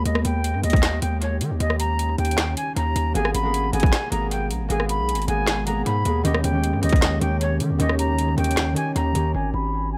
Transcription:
0.05 808-style bass D#2, ambient pad D#3 C#4 G4, flute D#5, closed hi-hat
0.15 cross-stick
0.25 808-style bass D#2, flute G5, closed hi-hat
0.44 closed hi-hat
0.54 808-style bass G2
0.64 808-style bass D#2, flute D#5, closed hi-hat
0.70 kick, closed hi-hat
0.76 closed hi-hat
0.83 snare, clap, closed hi-hat
1.02 808-style bass D#2, flute G5, closed hi-hat
1.22 flute C#5, closed hi-hat
1.41 808-style bass D#3, closed hi-hat
1.51 808-style bass D#2
1.60 808-style bass D#2, flute D#5, closed hi-hat
1.70 cross-stick
1.80 flute A#5, closed hi-hat
1.99 closed hi-hat
2.18 808-style bass D#2, flute G5, closed hi-hat
2.25 closed hi-hat
2.31 closed hi-hat
2.38 snare, clap, closed hi-hat
2.57 flute G#5, closed hi-hat
2.76 808-style bass D#2, flute A#5, closed hi-hat
2.96 808-style bass D#2, closed hi-hat
3.14 808-style bass G#1, ambient pad B2 G#3 G#4, harp A#3 B3 G#4, flute G#5, closed hi-hat
3.25 cross-stick
3.35 808-style bass G#1, flute B5, closed hi-hat
3.43 harp A#3 B3 G#4
3.54 closed hi-hat
3.72 808-style bass G#1, harp A#3 B3 G#4, flute G#5, closed hi-hat
3.80 kick, closed hi-hat
3.86 closed hi-hat
3.93 snare, clap, closed hi-hat
4.10 808-style bass G#1, harp A#3 B3 G#4, flute A#5, closed hi-hat
4.31 flute G5, closed hi-hat
4.51 808-style bass A#1, closed hi-hat
4.60 808-style bass G#1
4.68 808-style bass G#1, harp A#3 B3 G#4, flute G#5, closed hi-hat
4.80 cross-stick
4.89 flute B5, closed hi-hat
4.99 808-style bass B1
5.09 closed hi-hat
5.14 808-style bass G#1, closed hi-hat
5.22 closed hi-hat
5.27 808-style bass G#1, harp A#3 B3 G#4, flute G#5, closed hi-hat
5.47 snare, clap, closed hi-hat
5.66 harp A#3 B3 G#4, flute A#5, closed hi-hat
5.86 808-style bass G#2, flute B5, closed hi-hat
6.05 808-style bass D#2, harp A#3 B3 G#4, closed hi-hat
6.24 808-style bass D#2, harp D#3 C#4 G4, ambient pad D#3 C#4 G4, flute D#5, closed hi-hat
6.34 cross-stick
6.44 808-style bass D#2, flute G5, closed hi-hat
6.52 harp D#3 C#4 G4
6.64 closed hi-hat
6.73 808-style bass G2
6.81 808-style bass D#2, harp D#3 C#4 G4, flute D#5, closed hi-hat
6.89 kick, closed hi-hat
6.96 closed hi-hat
7.02 snare, clap, closed hi-hat
7.19 808-style bass D#2, harp D#3 C#4 G4, flute G5, closed hi-hat
7.41 flute C#5, closed hi-hat
7.60 808-style bass D#3, closed hi-hat
7.70 808-style bass D#2
7.79 808-style bass D#2, harp D#3 C#4 G4, flute D#5, closed hi-hat
7.89 cross-stick
7.99 flute A#5, closed hi-hat
8.18 closed hi-hat
8.36 808-style bass D#2, harp D#3 C#4 G4, flute G5, closed hi-hat
8.44 closed hi-hat
8.51 closed hi-hat
8.57 snare, clap, closed hi-hat
8.74 harp D#3 C#4 G4, flute G#5, closed hi-hat
8.96 808-style bass D#2, flute A#5, closed hi-hat
9.14 808-style bass D#2, harp D#3 C#4 G4, closed hi-hat
9.34 808-style bass G#1, flute G#5
9.54 808-style bass G#1, flute B5
9.92 flute G#5

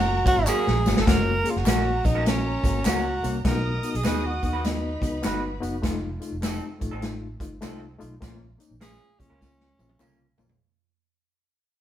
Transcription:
Already playing: fingered electric bass F#1, reed electric piano F#3 A#3 C#4 F#4, tenor saxophone F#4, violin section A#4 A#5
0.25 reed electric piano F#3 A#3 C#4 F#4, tenor saxophone F#4, kick, ride, tambourine
0.37 fingered electric bass G#1
0.47 reed electric piano F#3 A#3 C#4 F#4, clean electric guitar A#3 C#4 F#4 A#4, tenor saxophone G#4, clap, tambourine
0.67 fingered electric bass A#1, snare
0.85 fingered electric bass G#1, reed electric piano F#3 A#3 C#4 F#4, snare, tambourine
0.97 fingered electric bass G1, snare
1.01 tenor saxophone A4
1.06 fingered electric bass F#1, reed electric piano A#3 C#4 F#4, violin section A#4 A#5, tenor saxophone A#4, kick, snare, closed hi-hat, tambourine
1.44 reed electric piano A#3 C#4 G#4, closed hi-hat, tambourine
1.50 tenor saxophone F4
1.56 fingered electric bass F#1, tenor saxophone F#4, snare
1.66 fingered electric bass A#1, reed electric piano A#3 C#4 F#4, clean electric guitar A#3 C#4 F#4 A#4, snare, clap, closed hi-hat, tambourine
2.04 fingered electric bass A#1, reed electric piano A#3 C#4 F#4, tenor saxophone D#4, kick, closed hi-hat, tambourine
2.15 clean electric guitar A#3 C#4 F#4 A#4
2.26 reed electric piano A#3 C#4 F#4, tenor saxophone C#4, snare, closed hi-hat, tambourine
2.64 fingered electric bass G#1, reed electric piano A#3 C#4 F#4, kick, closed hi-hat, tambourine
2.85 fingered electric bass C#2, clean electric guitar A#3 C#4 F#4 A#4, reed electric piano A#3 C#4 F#4, tenor saxophone F#4, snare, clap, closed hi-hat, tambourine
3.23 fingered electric bass C2, reed electric piano A#3 C#4 F#4, closed hi-hat, tambourine
3.44 fingered electric bass B1, reed electric piano B3 D#4 F#4, tenor saxophone A#4, violin section D#5 D#6, kick, snare, closed hi-hat
3.83 reed electric piano B3 D#4 F#4, closed hi-hat, tambourine
3.95 fingered electric bass B1, tenor saxophone G#4, closed hi-hat
4.04 fingered electric bass D#2, reed electric piano B3 D#4 F#4, clean electric guitar B3 D#4 F#4 B4, snare, clap, closed hi-hat, tambourine
4.26 tenor saxophone F#4
4.42 fingered electric bass D#2, reed electric piano B3 D#4 F#4, kick, closed hi-hat, tambourine
4.53 clean electric guitar B3 D#4 F#4 B4
4.64 reed electric piano B3 D#4 F#4, tenor saxophone D#4, violin section B4 B5, snare, closed hi-hat, tambourine
5.01 fingered electric bass C#2, reed electric piano B3 D#4 F#4, kick, closed hi-hat, tambourine
5.22 fingered electric bass G1, reed electric piano B3 D#4 F#4, clean electric guitar B3 D#4 F#4 B4, snare, clap, closed hi-hat, tambourine
5.60 fingered electric bass F#1, reed electric piano B3 D#4 F#4, closed hi-hat, tambourine
5.82 fingered electric bass F1, reed electric piano A3 D#4 F4, kick, snare, closed hi-hat, tambourine
6.20 reed electric piano A3 D#4 F4, closed hi-hat, tambourine
6.32 fingered electric bass F1
6.41 clean electric guitar F3 C4 D#4 A4, reed electric piano A3 D#4 G4, snare, clap, closed hi-hat, tambourine
6.80 fingered electric bass A1, reed electric piano A3 D#4 F4, kick, closed hi-hat, tambourine
6.91 fingered electric bass A1, clean electric guitar F3 C4 D#4 A4
7.01 reed electric piano A3 D#4 F4, snare, closed hi-hat, tambourine
7.40 fingered electric bass G1, reed electric piano A3 D#4 F4, kick, closed hi-hat, tambourine
7.61 fingered electric bass C2, clean electric guitar F3 C4 D#4 A4, reed electric piano A3 D#4 F4, snare, clap, closed hi-hat, tambourine
7.98 fingered electric bass B1, reed electric piano A3 D#4 F4, closed hi-hat, tambourine
8.21 fingered electric bass A#1, reed electric piano A#3 C#4 F4, kick, snare, closed hi-hat, tambourine
8.58 reed electric piano A#3 C#4 D#4, closed hi-hat, tambourine
8.71 fingered electric bass A#1
8.80 reed electric piano A#3 C#4 F4, clean electric guitar A#3 C#4 F4 A#4, tenor saxophone G#4, snare, clap, closed hi-hat, tambourine
9.19 fingered electric bass C#2, reed electric piano A#3 C#4 F4, tenor saxophone C#4, kick, closed hi-hat, tambourine
9.30 fingered electric bass C#2, clean electric guitar A#3 C#4 F4 A#4
9.40 reed electric piano A#3 C#4 F4, kick, snare, tambourine
9.60 snare
9.78 fingered electric bass A#1, reed electric piano A#3 C#4 F4, high tom, tambourine
9.89 high tom
9.99 fingered electric bass C2, reed electric piano A#3 C#4 F4, clean electric guitar A#3 C#4 F4 A#4, clap, mid tom, tambourine
10.38 fingered electric bass B1, reed electric piano A#3 C#4 F4, floor tom, tambourine
10.49 floor tom

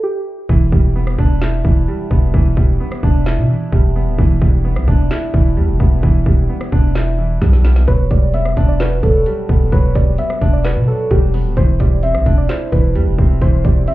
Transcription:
0.03 synth keys G4
0.49 808-style bass E1, grand piano E3, kick
0.72 808-style bass E1, grand piano G3, kick
0.96 grand piano B3
1.07 cross-stick
1.19 808-style bass E1, grand piano D4, kick
1.42 grand piano E4, snare, clap
1.65 808-style bass E1, grand piano E3, kick
1.88 grand piano G3
2.11 808-style bass E1, grand piano B3, kick
2.34 808-style bass E1, grand piano E3, kick
2.57 808-style bass E1, grand piano G3, kick
2.80 grand piano B3
2.92 cross-stick
3.03 808-style bass E1, grand piano D4, kick
3.26 grand piano E4, snare, clap
3.38 808-style bass B2
3.50 grand piano E3
3.72 808-style bass E1, grand piano G3, kick
3.96 grand piano B3
4.07 808-style bass D1
4.19 808-style bass E1, grand piano E3, kick
4.42 808-style bass E1, grand piano G3, kick
4.65 grand piano B3
4.76 808-style bass B1, cross-stick
4.88 808-style bass E1, grand piano D4, kick
5.11 grand piano E4, snare, clap
5.34 808-style bass E1, grand piano E3, kick
5.57 808-style bass E2, grand piano G3
5.69 808-style bass E1
5.80 808-style bass E1, grand piano B3, kick
6.03 808-style bass E1, grand piano E3, kick
6.26 808-style bass E1, grand piano G3, kick
6.49 grand piano B3
6.61 cross-stick
6.72 808-style bass E1, grand piano D4, kick
6.95 grand piano E4, snare, clap
7.19 grand piano E3
7.42 808-style bass B1, grand piano G3, kick, snare
7.53 snare
7.65 grand piano B3, snare
7.76 snare
7.88 808-style bass E1, grand piano F#3, synth keys B4, kick, closed hi-hat
8.11 808-style bass E1, grand piano G3, synth keys D5, kick, closed hi-hat
8.34 grand piano B3, synth keys E5, closed hi-hat
8.45 cross-stick
8.57 808-style bass E1, grand piano D4, kick, closed hi-hat
8.69 synth keys D5
8.80 grand piano F#4, synth keys B4, snare, clap, closed hi-hat
9.03 808-style bass E1, grand piano F#3, synth keys A4, kick, closed hi-hat
9.26 grand piano G3, closed hi-hat
9.49 808-style bass E1, grand piano B3, kick
9.72 808-style bass E1, grand piano F#3, synth keys B4, kick, closed hi-hat
9.95 808-style bass E1, grand piano G3, synth keys D5, kick, closed hi-hat
10.18 grand piano B3, synth keys E5, closed hi-hat
10.30 cross-stick
10.41 808-style bass E1, grand piano D4, kick, closed hi-hat
10.53 synth keys D5
10.65 grand piano F#4, synth keys B4, snare, clap, closed hi-hat
10.76 808-style bass B2
10.88 grand piano F#3, synth keys A4
11.11 808-style bass E1, grand piano G3, synth keys G4, kick, closed hi-hat
11.34 grand piano B3, open hi-hat
11.45 808-style bass D1
11.57 808-style bass E1, grand piano E3, synth keys C5, kick, closed hi-hat
11.80 808-style bass E1, grand piano G3, synth keys D5, kick, closed hi-hat
12.03 grand piano C4, synth keys E5, closed hi-hat
12.15 808-style bass B1, cross-stick
12.26 808-style bass E1, grand piano D4, kick, closed hi-hat
12.38 synth keys D5
12.49 grand piano E4, synth keys C5, snare, clap, closed hi-hat
12.72 808-style bass E1, grand piano E3, synth keys B4, kick, closed hi-hat
12.95 808-style bass E2, grand piano G3, closed hi-hat
13.07 808-style bass E1
13.19 808-style bass E1, grand piano C4, kick
13.42 808-style bass E1, grand piano E3, synth keys C5, kick, closed hi-hat
13.65 808-style bass E1, grand piano G3, synth keys D5, kick, closed hi-hat
13.88 grand piano C4, synth keys E5, closed hi-hat

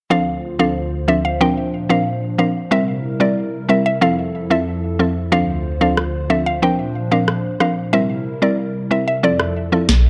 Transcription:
0.10 analog synth pad D2 D3 F4 C5, synth pluck F3 C4 D4 A4 F5
0.59 synth pluck F3 C4 D4 A4 F5
1.08 synth pluck F3 C4 D4 A4 E5
1.25 synth pluck F5
1.41 analog synth pad A#2 F3 D4, synth pluck F3 C4 D4 A#4 G5
1.89 synth pluck F3 C4 D4 A#4 F5
2.38 synth pluck F3 C4 D4 A#4 F5
2.71 analog synth pad C3 G3 E4 A#4, synth pluck G3 C4 E4 A#4 E5
3.20 synth pluck G3 C4 E4 A#4 D5
3.69 synth pluck G3 C4 E4 A#4 E5
3.86 synth pluck E5
4.01 analog synth pad F2 F3 A4, synth pluck F3 C4 E4 A4 F5
4.50 synth pluck F3 C4 E4 A4 E5
4.99 synth pluck F3 C4 E4 A4
5.32 analog synth pad D2 D3 F4 C5, synth pluck F3 C4 D4 A4 F5
5.81 synth pluck F3 C4 D4 A4 F5
5.97 cross-stick
6.30 synth pluck F3 C4 D4 A4 E5
6.46 synth pluck F5
6.62 analog synth pad A#2 F3 D4, synth pluck F3 C4 D4 A#4 G5
7.11 synth pluck F3 C4 D4 A#4 F5
7.28 cross-stick
7.60 synth pluck F3 C4 D4 A#4 F5, cross-stick
7.93 analog synth pad C3 G3 E4 A#4, synth pluck G3 C4 E4 A#4 E5
8.42 synth pluck G3 C4 E4 A#4 D5
8.91 synth pluck G3 C4 E4 A#4 E5
9.08 synth pluck E5
9.23 analog synth pad F2 F3 A4, synth pluck F3 C4 E4 A4 D5
9.40 cross-stick
9.72 synth pluck F3 C4 E4 A4
9.89 kick, snare

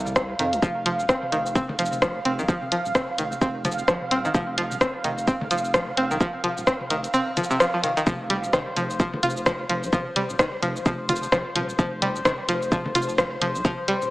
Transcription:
Already playing: sub bass C2, synth texture F5
0.06 high tom, cabasa
0.16 synth pluck C3, kick, cross-stick, cabasa
0.39 sub bass F2, synth pluck D#3, closed hi-hat, high tom, cabasa
0.53 sub bass C2, closed hi-hat, cabasa
0.62 sub bass F1, synth pluck F3, kick, cabasa
0.86 synth pluck F3, closed hi-hat, high tom
1.00 sub bass D#1, cabasa
1.09 synth pluck C4, kick, cross-stick, cabasa
1.23 high tom
1.32 sub bass F1, synth pluck D#3, closed hi-hat, cabasa
1.46 cabasa
1.55 synth pluck C4, kick, high tom, cabasa
1.69 sub bass F1, mid tom
1.79 sub bass F1, synth pluck F3, closed hi-hat, cabasa
1.86 cabasa
1.92 high tom, cabasa
2.02 synth pluck F3, kick, cross-stick, cabasa
2.25 sub bass F1, synth pluck C4, closed hi-hat, high tom
2.39 sub bass C2, synth pluck D#3, cabasa
2.48 synth pluck F3, kick, cabasa
2.62 high tom
2.72 synth pluck F3, closed hi-hat
2.85 sub bass D#1, cabasa
2.95 synth pluck C4, kick, cross-stick, high tom, cabasa
3.18 sub bass F1, synth pluck D#3, closed hi-hat, cabasa
3.32 high tom, cabasa
3.41 sub bass F1, synth pluck C4, kick, cabasa
3.65 synth pluck F3, closed hi-hat, mid tom, high tom, cabasa
3.72 cabasa
3.79 cabasa
3.88 sub bass A#1, synth pluck F3, kick, cross-stick, cabasa
4.02 high tom
4.11 sub bass D#1, synth pluck C4, closed hi-hat
4.25 synth pluck D#3, cabasa
4.34 sub bass F1, synth pluck F3, kick, high tom, cabasa
4.58 synth pluck F3, closed hi-hat
4.71 sub bass D#1, high tom, cabasa
4.81 synth pluck C4, kick, cross-stick, cabasa
5.04 sub bass F1, synth pluck D#3, closed hi-hat, high tom, cabasa
5.18 cabasa
5.28 synth pluck C4, kick, cabasa
5.41 sub bass F1, mid tom, high tom
5.51 sub bass F1, synth pluck F3, closed hi-hat, cabasa
5.58 cabasa
5.65 cabasa
5.74 synth pluck F3, kick, cross-stick, high tom, cabasa
5.97 sub bass F1, synth pluck C4, closed hi-hat
6.11 sub bass C2, synth pluck D#3, high tom, cabasa
6.21 synth pluck F3, kick, cabasa
6.44 synth pluck F3, closed hi-hat, high tom
6.58 sub bass D#1, cabasa
6.67 synth pluck C4, kick, cross-stick, cabasa
6.81 high tom
6.90 sub bass F1, synth pluck D#3, closed hi-hat, cabasa
7.04 closed hi-hat, cabasa
7.14 synth pluck C4, high tom, cabasa
7.37 synth pluck F3, closed hi-hat, mid tom, cabasa
7.44 cabasa
7.51 synth pluck C3, high tom, cabasa
7.60 synth pluck F3, cross-stick, cabasa
7.74 synth pluck F3
7.83 synth pluck D#3, closed hi-hat, high tom, cabasa
7.97 synth pluck D#3, closed hi-hat, cabasa
8.07 sub bass F1, synth pluck F3, synth texture C5, kick, high tom, cabasa
8.30 synth pluck G3, closed hi-hat, high tom
8.44 sub bass D#1, cabasa
8.53 synth pluck D#3, kick, cross-stick, high tom, cabasa
8.76 sub bass F1, synth pluck F3, closed hi-hat, high tom, cabasa
8.90 cabasa
9.00 synth pluck F3, kick, high tom, cabasa
9.13 sub bass F1, mid tom
9.23 sub bass F1, synth pluck F4, closed hi-hat, high tom, cabasa
9.30 cabasa
9.37 cabasa
9.46 synth pluck F3, kick, cross-stick, high tom, cabasa
9.69 sub bass F1, synth pluck F3, closed hi-hat, high tom
9.83 sub bass C2, cabasa
9.93 synth pluck F3, kick, high tom, cabasa
10.16 synth pluck G3, closed hi-hat, high tom
10.30 sub bass D#1, cabasa
10.39 synth pluck D#3, kick, cross-stick, high tom, cabasa
10.62 sub bass F1, synth pluck F3, closed hi-hat, high tom, cabasa
10.76 cabasa
10.86 sub bass F1, synth pluck F3, kick, high tom, cabasa
11.09 synth pluck F4, closed hi-hat, mid tom, high tom, cabasa
11.16 cabasa
11.23 cabasa
11.32 sub bass A#1, synth pluck F3, kick, cross-stick, high tom, cabasa
11.56 sub bass D#1, synth pluck F3, closed hi-hat, high tom
11.69 cabasa
11.79 sub bass F1, synth pluck F3, kick, high tom, cabasa
12.02 synth pluck G3, closed hi-hat, high tom
12.16 sub bass D#1, cabasa
12.25 synth pluck D#3, kick, cross-stick, high tom, cabasa
12.49 sub bass F1, synth pluck F3, closed hi-hat, high tom, cabasa
12.62 cabasa
12.72 synth pluck F3, kick, high tom, cabasa
12.86 sub bass F1, mid tom
12.95 sub bass F1, synth pluck F4, closed hi-hat, high tom, cabasa
13.02 cabasa
13.09 cabasa
13.18 synth pluck F3, kick, cross-stick, high tom, cabasa
13.42 sub bass F1, synth pluck F3, closed hi-hat, high tom
13.55 sub bass C2, cabasa
13.65 synth pluck F3, kick, high tom, cabasa
13.88 synth pluck G3, closed hi-hat, high tom
14.02 sub bass D#1, cabasa

